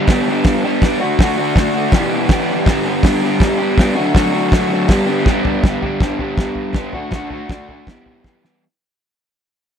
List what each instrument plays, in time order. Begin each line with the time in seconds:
Already playing: overdriven electric guitar G4
0.07 overdriven electric guitar G2 D3 G3 B3 D4, kick, snare, open hi-hat
0.12 overdriven electric guitar G4
0.28 overdriven electric guitar G3 B3 D4 G4
0.44 kick, snare, open hi-hat
0.64 overdriven electric guitar G3 B3 D4 G4
0.82 overdriven electric guitar G3 B3 D4 G4, kick, snare, open hi-hat
1.01 overdriven electric guitar D3 A3 D4 F#4
1.19 overdriven electric guitar D3 A3 D4 F#4, kick, snare, open hi-hat
1.37 overdriven electric guitar A3 D4 F#4
1.56 overdriven electric guitar D3 A3 D4, kick, snare, open hi-hat
1.60 overdriven electric guitar F#4
1.74 overdriven electric guitar A3 D4 F#4
1.92 overdriven electric guitar E2 B2 E3 G3 B3 G4, kick, snare, open hi-hat
2.10 overdriven electric guitar G3 B3 G4
2.14 overdriven electric guitar E3
2.29 overdriven electric guitar E3 G3 B3 G4, kick, snare, open hi-hat
2.66 overdriven electric guitar G2 D3 G3 B3, kick, snare, open hi-hat
2.70 overdriven electric guitar D4 G4
2.86 overdriven electric guitar G3 B3 D4 G4
3.03 overdriven electric guitar G2 D3 G3 B3 D4 G4, kick, snare, open hi-hat
3.22 overdriven electric guitar G3 B3 D4 G4
3.40 kick, snare, open hi-hat
3.58 overdriven electric guitar G3 B3 D4 G4
3.78 overdriven electric guitar G3 B3 D4 G4, kick, snare, open hi-hat
3.96 overdriven electric guitar D3 F#3 A3 D4 F#4
4.14 overdriven electric guitar D3 F#3 A3 D4 F#4, kick, snare, open hi-hat
4.31 overdriven electric guitar A3 D4 F#4
4.51 overdriven electric guitar D3 F#3 A3 D4 F#4, kick, snare, open hi-hat
4.70 overdriven electric guitar A3 D4 F#4
4.88 overdriven electric guitar G2 D3 G3 B3 D4 G4, kick, snare, open hi-hat
5.07 overdriven electric guitar G3 B3 D4 G4
5.26 overdriven electric guitar G3 B3 D4 G4, kick, snare
5.45 floor tom
5.63 overdriven electric guitar G2 D3 G3 B3 D4, kick, snare, floor tom
5.67 overdriven electric guitar G4
5.83 overdriven electric guitar G3 B3 D4 G4, floor tom
6.00 overdriven electric guitar G2 D3 G3 B3 D4 G4, kick, snare, floor tom
6.19 overdriven electric guitar B3 D4 G4, floor tom
6.23 overdriven electric guitar G3
6.37 kick, snare, floor tom
6.55 floor tom
6.73 overdriven electric guitar G3 B3, kick, snare, floor tom
6.77 overdriven electric guitar D4 G4
6.93 overdriven electric guitar A3 D4 F#4, floor tom
6.97 overdriven electric guitar D3
7.11 overdriven electric guitar D3 A3 D4, kick, snare, floor tom
7.15 overdriven electric guitar F#4
7.30 overdriven electric guitar A3 D4 F#4, floor tom
7.49 overdriven electric guitar D3 A3 D4 F#4, kick, snare, floor tom
7.69 overdriven electric guitar A3 D4 F#4, floor tom
7.87 overdriven electric guitar E2 B2 E3 G3 B3, kick, snare, floor tom
7.91 overdriven electric guitar G4
8.06 floor tom
8.24 overdriven electric guitar E3 G3 B3, kick, snare
8.29 overdriven electric guitar G4
8.44 overdriven electric guitar E3 G3 B3 G4, snare